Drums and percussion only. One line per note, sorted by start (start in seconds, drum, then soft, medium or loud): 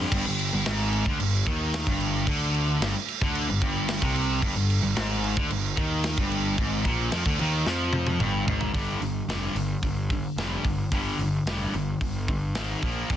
0.12 kick loud
0.12 crash loud
0.12 crash medium
0.39 crash medium
0.66 snare loud
0.66 crash medium
0.93 crash medium
1.06 kick loud
1.20 crash medium
1.47 kick loud
1.47 crash medium
1.74 snare loud
1.74 crash medium
1.87 kick loud
2.01 crash medium
2.27 kick loud
2.27 crash medium
2.54 crash medium
2.82 snare loud
2.82 crash medium
3.08 crash medium
3.22 kick loud
3.35 crash medium
3.62 kick loud
3.62 crash medium
3.88 snare loud
3.88 crash medium
4.02 kick loud
4.16 crash medium
4.42 kick loud
4.42 crash medium
4.70 crash medium
4.96 snare loud
4.96 crash medium
5.24 crash medium
5.37 kick loud
5.50 crash medium
5.77 kick loud
5.77 crash medium
6.04 snare loud
6.04 crash medium
6.18 kick loud
6.32 crash medium
6.58 kick loud
6.58 crash medium
6.85 kick loud
6.85 crash medium
7.12 snare loud
7.12 crash medium
7.26 kick loud
7.39 crash medium
7.67 snare medium
7.93 high tom medium
8.07 high tom medium
8.20 mid tom medium
8.48 floor tom loud
8.61 floor tom medium
8.74 kick loud
8.74 open hi-hat medium
9.02 open hi-hat soft
9.30 snare loud
9.30 open hi-hat medium
9.56 open hi-hat soft
9.83 kick medium
9.83 open hi-hat medium
10.10 kick medium
10.10 open hi-hat soft
10.38 snare medium
10.38 open hi-hat medium
10.65 kick medium
10.65 open hi-hat soft
10.92 kick loud
10.92 open hi-hat medium
11.19 open hi-hat medium
11.47 snare loud
11.47 open hi-hat medium
11.74 open hi-hat soft
12.01 kick medium
12.01 open hi-hat medium
12.28 kick medium
12.28 open hi-hat soft
12.55 snare loud
12.55 open hi-hat medium
12.82 kick medium
12.82 open hi-hat medium
13.10 kick loud
13.10 open hi-hat medium